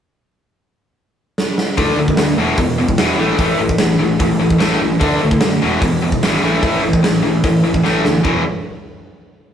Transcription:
1.38 snare
1.58 snare
1.77 picked electric bass D2, distorted electric guitar D3 A3 D4, kick, open hi-hat
1.96 picked electric bass D2, distorted electric guitar D3 A3
2.08 kick
2.17 picked electric bass D2, distorted electric guitar D3 A3, snare, open hi-hat
2.37 picked electric bass E1, distorted electric guitar E2 B2 E3
2.57 picked electric bass E1, distorted electric guitar E2 B2, kick, open hi-hat
2.78 distorted electric guitar E2 B2
2.88 kick
2.98 picked electric bass E1, distorted electric guitar E2 B2 E3, snare, open hi-hat
3.18 picked electric bass A1, distorted electric guitar A2 E3 A3
3.38 picked electric bass A1, distorted electric guitar A2 E3 A3, kick, open hi-hat
3.58 picked electric bass A1, distorted electric guitar A2 E3
3.69 kick
3.78 picked electric bass A1, distorted electric guitar A2 E3, snare, open hi-hat
3.99 picked electric bass A1, distorted electric guitar A2 E3
4.19 picked electric bass A1, distorted electric guitar A2 E3, kick, open hi-hat
4.39 picked electric bass A1, distorted electric guitar A2 E3
4.50 kick
4.59 picked electric bass A1, distorted electric guitar A2 E3 A3, snare, open hi-hat
4.81 picked electric bass A1, distorted electric guitar A2 E3
5.00 picked electric bass D2, distorted electric guitar D3 A3 D4, kick, open hi-hat
5.20 picked electric bass D2, distorted electric guitar D3 A3
5.31 kick
5.41 picked electric bass F#2, distorted electric guitar D3 A3, snare, open hi-hat
5.62 picked electric bass E1, distorted electric guitar E2 B2 E3
5.81 picked electric bass E1, distorted electric guitar E2 B2, kick, open hi-hat
6.02 distorted electric guitar E2 B2
6.12 kick
6.23 picked electric bass G#1, distorted electric guitar E2 B2 E3, snare, open hi-hat
6.43 picked electric bass A1, distorted electric guitar A2 E3 A3
6.62 picked electric bass A1, distorted electric guitar A2 E3 A3, kick, open hi-hat
6.82 picked electric bass A1, distorted electric guitar A2 E3
6.93 kick
7.03 picked electric bass A1, distorted electric guitar A2 E3, snare, open hi-hat
7.23 picked electric bass A1, distorted electric guitar A2 E3
7.44 picked electric bass A1, distorted electric guitar A2 E3, kick, open hi-hat
7.63 picked electric bass A1, distorted electric guitar A2 E3
7.74 kick
7.84 picked electric bass A1, distorted electric guitar A2 E3 A3, snare
8.04 picked electric bass D2, distorted electric guitar A2 E3, snare
8.24 picked electric bass E1, distorted electric guitar E2 B2 E3, kick

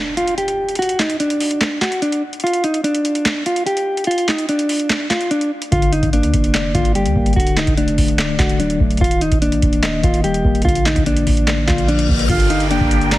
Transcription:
Already playing: clean electric guitar D4, impact
0.17 clean electric guitar F4, closed hi-hat
0.28 closed hi-hat
0.38 clean electric guitar G4, closed hi-hat
0.48 closed hi-hat
0.69 closed hi-hat
0.75 clean electric guitar F#4, closed hi-hat
0.82 closed hi-hat
0.89 closed hi-hat
0.99 clean electric guitar D#4, snare, clap, closed hi-hat
1.10 closed hi-hat
1.20 clean electric guitar D4, closed hi-hat
1.30 closed hi-hat
1.40 open hi-hat
1.51 closed hi-hat
1.61 snare, clap, closed hi-hat
1.81 clean electric guitar F#4, snare, clap, closed hi-hat
1.92 closed hi-hat
2.02 clean electric guitar D4, closed hi-hat
2.12 closed hi-hat
2.33 closed hi-hat
2.40 clean electric guitar F4, closed hi-hat
2.47 closed hi-hat
2.53 closed hi-hat
2.64 clean electric guitar D#4, closed hi-hat
2.74 closed hi-hat
2.84 clean electric guitar D4, closed hi-hat
2.95 closed hi-hat
3.05 closed hi-hat
3.15 closed hi-hat
3.25 snare, clap, closed hi-hat
3.46 clean electric guitar F4, closed hi-hat
3.56 closed hi-hat
3.66 clean electric guitar G4, closed hi-hat
3.77 closed hi-hat
3.97 closed hi-hat
4.04 clean electric guitar F4, closed hi-hat
4.11 closed hi-hat
4.18 closed hi-hat
4.28 clean electric guitar D#4, snare, clap, closed hi-hat
4.38 closed hi-hat
4.49 clean electric guitar D4, closed hi-hat
4.59 closed hi-hat
4.69 open hi-hat
4.80 closed hi-hat
4.90 snare, clap, closed hi-hat
5.10 clean electric guitar F4, snare, clap, closed hi-hat
5.21 closed hi-hat
5.31 clean electric guitar D4, closed hi-hat
5.41 closed hi-hat
5.62 closed hi-hat
5.71 808-style bass G1, tine electric piano D3, clean electric guitar F4, kick, closed hi-hat
5.82 closed hi-hat
5.92 clean electric guitar D#4, closed hi-hat
6.03 808-style bass G1, kick, closed hi-hat
6.13 tine electric piano A#3, clean electric guitar D4, closed hi-hat
6.23 808-style bass D2, closed hi-hat
6.34 808-style bass F1, kick, closed hi-hat
6.44 closed hi-hat
6.54 tine electric piano D5, snare, clap, closed hi-hat
6.75 808-style bass G1, tine electric piano D3, clean electric guitar F4, kick, closed hi-hat
6.85 closed hi-hat
6.95 tine electric piano G3, clean electric guitar G4, closed hi-hat
7.06 808-style bass D2, closed hi-hat
7.16 808-style bass G1, tine electric piano A#3, kick
7.26 closed hi-hat
7.33 808-style bass D1, tine electric piano D3, clean electric guitar F#4, kick, closed hi-hat
7.40 closed hi-hat
7.47 closed hi-hat
7.57 clean electric guitar D#4, snare, clap, closed hi-hat
7.67 808-style bass D1, kick, closed hi-hat
7.77 tine electric piano A3, clean electric guitar D4, closed hi-hat
7.88 808-style bass F#1, closed hi-hat
7.98 808-style bass D1, kick, open hi-hat
8.08 closed hi-hat
8.18 tine electric piano D5, snare, clap, closed hi-hat
8.29 808-style bass C1
8.39 808-style bass D1, tine electric piano D3, clean electric guitar F#4, kick, snare, clap, closed hi-hat
8.49 closed hi-hat
8.60 tine electric piano F#3, clean electric guitar D4, closed hi-hat
8.70 closed hi-hat
8.80 808-style bass D1, tine electric piano A3, kick
8.90 closed hi-hat
8.97 808-style bass D#1, tine electric piano D#3, clean electric guitar F4, kick, closed hi-hat
9.04 closed hi-hat
9.11 closed hi-hat
9.21 clean electric guitar D#4, closed hi-hat
9.32 808-style bass D#1, kick, closed hi-hat
9.42 tine electric piano A#3, clean electric guitar D4, closed hi-hat
9.52 808-style bass A#1, closed hi-hat
9.62 808-style bass D#1, kick, closed hi-hat
9.73 closed hi-hat
9.83 tine electric piano D#5, snare, clap, closed hi-hat
10.03 808-style bass D#1, tine electric piano D#3, clean electric guitar F4, kick, closed hi-hat
10.14 closed hi-hat
10.24 tine electric piano G3, clean electric guitar G4, closed hi-hat
10.34 closed hi-hat
10.45 808-style bass D#1, tine electric piano A#3, kick
10.55 closed hi-hat
10.62 808-style bass A#1, tine electric piano D3, clean electric guitar F4, kick, closed hi-hat
10.69 closed hi-hat
10.75 closed hi-hat
10.86 808-style bass A1, clean electric guitar D#4, snare, clap, closed hi-hat
10.96 808-style bass A#1, kick, closed hi-hat
11.06 tine electric piano A#3, clean electric guitar D4, closed hi-hat
11.17 808-style bass A1, closed hi-hat
11.27 808-style bass A1, kick, open hi-hat
11.37 closed hi-hat
11.47 tine electric piano D5, snare, clap, closed hi-hat, reverse cymbal
11.67 808-style bass A#1, tine electric piano D3, clean electric guitar F4, kick, snare, clap, closed hi-hat
11.78 closed hi-hat
11.88 tine electric piano F3, clean electric guitar D4, closed hi-hat
11.99 closed hi-hat
12.09 808-style bass A#1, tine electric piano A#3, kick
12.19 closed hi-hat
12.29 808-style bass G1, tine electric piano D3, flute section D4 G4 A#4 G5, clean electric guitar F4, flute F5, kick, closed hi-hat, crash, downlifter
12.40 closed hi-hat
12.50 clean electric guitar D#4, closed hi-hat
12.60 closed hi-hat
12.71 tine electric piano A#3, clean electric guitar D4, flute G5, closed hi-hat
12.81 808-style bass G1, kick
12.91 closed hi-hat
13.01 closed hi-hat
13.12 tine electric piano D5, flute A#5, snare, clap, closed hi-hat

